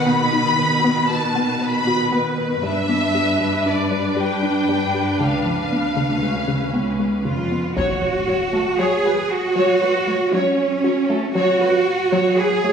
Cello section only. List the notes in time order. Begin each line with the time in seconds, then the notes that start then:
Already playing: B2
2.64 G2
5.20 C#2
5.71 D2
6.74 C#2
7.26 F2 F4
7.78 F#4
8.80 G#4
9.31 F#4
10.33 C#4
11.35 F#4
12.38 G#4